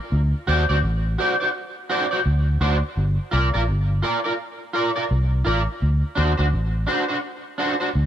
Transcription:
0.12 fingered electric bass D2
0.47 fingered electric bass D#2, clean electric guitar F#4 C5 D5
0.69 fingered electric bass D2, clean electric guitar F#4 C5 D5
0.83 fingered electric bass A1
1.18 clean electric guitar F#4 C5 D5
1.40 clean electric guitar F#4 C5 D5
1.90 clean electric guitar F#4 C5 D5
2.11 clean electric guitar F#4 C5 D5
2.26 fingered electric bass D2
2.61 fingered electric bass D2, clean electric guitar F#4 C5 D5
2.97 fingered electric bass G1
3.31 fingered electric bass C2, clean electric guitar F4 A#4 D5
3.54 fingered electric bass A#1, clean electric guitar F4 A#4 D5
3.69 fingered electric bass G1
4.02 clean electric guitar F4 A#4 D5
4.24 clean electric guitar F4 A#4 D5
4.73 clean electric guitar F4 A#4 D5
4.96 clean electric guitar F4 A#4 D5
5.11 fingered electric bass C2
5.45 fingered electric bass A1, clean electric guitar F4 A#4 D5
5.82 fingered electric bass D2
6.15 fingered electric bass D#2, clean electric guitar D4 F#4 C5
6.38 fingered electric bass D2, clean electric guitar D4 F#4 C5
6.53 fingered electric bass A1
6.87 clean electric guitar D4 F#4 C5
7.08 clean electric guitar D4 F#4 C5
7.58 clean electric guitar D4 F#4 C5
7.80 clean electric guitar D4 F#4 C5
7.95 fingered electric bass D2

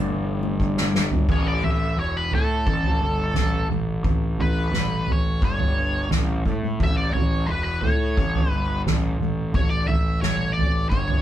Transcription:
Already playing: picked electric bass G1, clean electric guitar G2, string machine E3 A3 E4 A4 C#5
0.43 high conga
0.60 kick
0.77 snare
0.95 snare, low conga
1.11 floor tom
1.28 picked electric bass A1, lead electric guitar C#5, kick, floor tom, crash
1.47 lead electric guitar D5
1.63 picked electric bass A1, lead electric guitar E5, floor tom
1.97 picked electric bass E1, lead electric guitar C#5
2.17 lead electric guitar B4
2.31 picked electric bass A2, lead electric guitar A4, floor tom
2.67 picked electric bass A1, kick
2.84 floor tom
3.02 picked electric bass G1
3.34 picked electric bass A1, snare, floor tom, mid tom
3.69 picked electric bass A1, mid tom
4.04 picked electric bass A1, kick, floor tom
4.38 picked electric bass A1, lead electric guitar B4, floor tom
4.72 picked electric bass A1, snare, mid tom
5.07 floor tom
5.12 lead electric guitar C#5
5.42 picked electric bass G1, lead electric guitar C#5, kick
5.59 floor tom
6.10 picked electric bass A1, snare, floor tom, mid tom
6.45 picked electric bass A2, kick, mid tom
6.62 mid tom
6.80 picked electric bass A1, lead electric guitar E5, kick, floor tom
6.97 lead electric guitar D5
7.13 picked electric bass A1, lead electric guitar C#5, floor tom
7.46 picked electric bass E1, lead electric guitar B4
7.64 lead electric guitar B4
7.81 picked electric bass A2, lead electric guitar C#5, floor tom
8.17 picked electric bass A1, kick
8.35 floor tom
8.50 picked electric bass G1, lead electric guitar B4
8.86 picked electric bass A1, snare, floor tom, mid tom
9.20 picked electric bass A1, mid tom
9.54 picked electric bass A1, lead electric guitar C#5, kick, floor tom
9.70 lead electric guitar D5
9.88 picked electric bass A1, lead electric guitar E5, floor tom
10.21 picked electric bass A1, lead electric guitar C#5, snare, mid tom
10.53 lead electric guitar D5
10.58 floor tom
10.89 picked electric bass G1, lead electric guitar C#5, kick
11.09 floor tom

